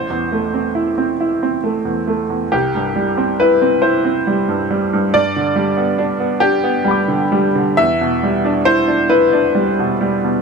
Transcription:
0.00 2.49 A1 soft
0.00 2.08 C5 medium
0.10 0.45 E2 soft
0.32 0.67 A3 soft
0.54 0.89 C4 soft
0.75 1.11 E4 soft
0.98 1.33 C4 soft
1.20 1.55 E4 soft
1.43 1.78 C4 soft
1.64 1.99 A3 soft
1.85 2.21 E2 soft
2.07 2.43 A3 soft
2.30 2.52 E2 soft
2.52 5.10 C2 soft
2.52 3.41 G4 medium
2.75 3.11 G2 soft
2.96 3.32 G3 soft
3.18 3.53 C4 soft
3.40 3.75 E4 soft
3.40 3.84 B4 medium
3.62 3.97 C4 soft
3.82 4.18 E4 soft
3.82 5.13 C5 medium
4.05 4.40 C4 soft
4.27 4.62 G3 soft
4.49 4.84 G2 soft
4.71 5.05 G3 soft
4.93 5.12 G2 soft
5.14 7.76 G2 medium
5.14 6.43 D5 medium
5.36 5.70 D3 soft
5.56 5.91 G3 soft
5.77 6.12 B3 soft
5.98 6.33 D4 medium
6.20 6.55 B3 soft
6.40 6.77 D4 medium
6.40 7.78 G4 medium
6.63 7.00 B3 medium
6.84 7.23 G3 medium
6.84 7.74 G5 soft
6.84 7.76 B5 soft
6.91 7.78 D6 soft
7.08 7.47 D3 medium
7.32 7.70 G3 medium
7.55 7.79 D3 medium
7.77 10.42 E2 medium
7.77 8.65 E5 loud
8.01 8.36 B2 soft
8.23 8.58 G3 soft
8.45 8.79 D4 medium
8.65 9.01 E4 medium
8.65 9.10 C5 loud
8.88 9.23 D4 medium
9.09 9.46 E4 medium
9.09 10.42 B4 medium
9.32 9.69 D4 medium
9.55 9.92 G3 soft
9.79 10.16 B2 soft
10.01 10.38 G3 soft
10.24 10.42 B2 soft

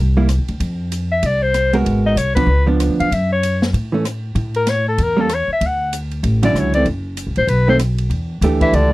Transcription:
0.00 0.36 C2 medium
0.17 0.28 G3 medium
0.17 0.28 A#3 medium
0.17 0.28 E4 medium
0.29 cross-stick medium
0.29 hi-hat pedal soft
0.29 ride medium
0.38 0.48 E2 medium
0.48 0.59 D2 medium
0.48 ride soft
0.60 1.20 F2 medium
0.60 kick soft
0.60 ride medium
0.92 hi-hat pedal medium
0.92 ride medium
1.12 1.27 E5 medium
1.23 1.82 C2 medium
1.23 1.44 D5 medium
1.23 kick soft
1.23 ride medium
1.42 1.74 C5 medium
1.54 cross-stick medium
1.54 hi-hat pedal medium
1.54 ride medium
1.73 2.14 G#3 medium
1.73 2.15 B3 medium
1.73 2.15 F#4 medium
1.73 2.15 A#4 medium
1.73 ride soft
1.85 2.14 G#1 medium
1.85 kick soft
1.85 ride medium
2.06 2.19 D#5 medium
2.15 2.45 C2 medium
2.15 2.34 C#5 medium
2.15 hi-hat pedal medium
2.15 ride medium
2.35 2.47 F3 soft
2.35 2.47 B3 medium
2.35 2.47 D4 medium
2.35 2.65 B4 medium
2.35 kick medium
2.35 ride medium
2.46 2.86 C#2 medium
2.67 3.08 F3 medium
2.67 3.08 B3 medium
2.67 3.09 D4 medium
2.80 cross-stick medium
2.80 hi-hat pedal soft
2.80 ride medium
2.88 2.99 D2 medium
3.00 3.10 F2 medium
3.00 3.15 F5 medium
3.00 ride soft
3.11 3.70 F#2 medium
3.11 3.31 E5 medium
3.11 kick soft
3.11 ride medium
3.32 3.60 C#5 medium
3.43 hi-hat pedal soft
3.43 ride medium
3.62 snare soft
3.73 4.33 A2 medium
3.73 kick soft
3.73 ride medium
3.92 4.03 E3 medium
3.92 4.04 A3 medium
3.92 4.04 C#4 medium
4.05 cross-stick medium
4.05 hi-hat pedal soft
4.05 ride medium
4.35 4.95 A2 medium
4.35 kick soft
4.35 ride soft
4.54 4.71 A#4 medium
4.54 ride soft
4.67 4.87 C#5 medium
4.67 snare soft
4.67 hi-hat pedal soft
4.67 ride medium
4.88 5.04 A4 medium
4.98 5.45 E2 medium
4.98 kick soft
4.98 ride medium
5.02 5.22 A#4 medium
5.17 5.28 G3 medium
5.17 5.29 A#3 medium
5.17 5.29 C#4 medium
5.21 5.36 A4 medium
5.29 cross-stick medium
5.29 hi-hat pedal medium
5.29 ride medium
5.34 5.51 C#5 medium
5.48 muted upright bass stroke soft
5.53 5.68 E5 medium
5.61 6.20 D2 medium
5.61 kick soft
5.61 ride medium
5.66 5.95 F#5 medium
5.93 hi-hat pedal medium
5.93 ride medium
6.11 ride soft
6.23 6.52 A1 medium
6.23 kick soft
6.23 ride medium
6.43 6.72 D3 medium
6.43 6.72 F#3 medium
6.43 6.72 C#4 medium
6.43 6.73 E4 medium
6.43 6.60 D5 medium
6.43 ride medium
6.53 6.83 C#2 medium
6.53 cross-stick medium
6.53 hi-hat pedal soft
6.59 6.74 C#5 medium
6.73 6.85 E3 medium
6.73 6.86 A3 soft
6.73 6.86 C4 medium
6.73 6.85 D5 medium
6.73 ride soft
6.85 7.24 F#1 medium
6.85 kick soft
6.85 ride soft
7.17 hi-hat pedal medium
7.17 ride medium
7.27 7.37 C2 medium
7.36 7.47 A1 medium
7.36 7.50 C5 medium
7.36 ride soft
7.47 8.07 B1 medium
7.47 7.68 B4 medium
7.47 kick soft
7.47 ride medium
7.68 7.79 D#3 medium
7.68 7.79 A3 medium
7.68 7.79 C4 medium
7.68 7.76 C5 medium
7.79 cross-stick medium
7.79 hi-hat pedal medium
7.79 ride medium
7.98 ride soft
8.10 8.41 E2 medium
8.10 kick soft
8.10 ride soft
8.41 8.72 D2 medium
8.41 8.90 E3 medium
8.41 8.89 A3 medium
8.41 8.90 D4 medium
8.41 8.90 G4 medium
8.41 kick soft
8.41 hi-hat pedal soft
8.41 ride medium
8.61 8.77 E3 medium
8.61 8.76 E5 medium
8.61 kick soft
8.61 ride soft
8.73 8.93 C#2 medium
8.73 8.93 D3 medium
8.73 8.93 D5 medium
8.73 kick soft
8.73 ride medium

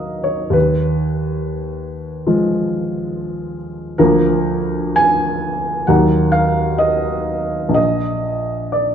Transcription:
0.00 0.48 D#2 soft
0.00 0.51 F#3 soft
0.00 0.51 A#3 soft
0.00 0.52 D#4 soft
0.00 0.25 D#5 soft
0.00 0.57 F5 soft
0.24 0.54 C#5 soft
0.50 3.93 D#2 soft
0.50 3.55 B4 soft
2.27 3.96 F3 soft
2.27 3.96 G#3 soft
2.27 3.96 F4 soft
3.98 5.85 D2 soft
3.98 5.84 F3 soft
3.98 5.85 A#3 soft
3.98 5.85 F4 soft
3.98 4.97 A#4 medium
4.96 5.88 G#5 medium
5.87 7.73 D#2 soft
5.87 7.73 F#3 soft
5.87 7.73 A#3 soft
5.87 7.73 D#4 soft
5.87 6.33 F#5 soft
6.32 6.80 F5 medium
6.78 7.73 D#5 medium
7.69 8.95 A#1 soft
7.74 8.73 D#5 medium
8.72 8.95 D5 soft

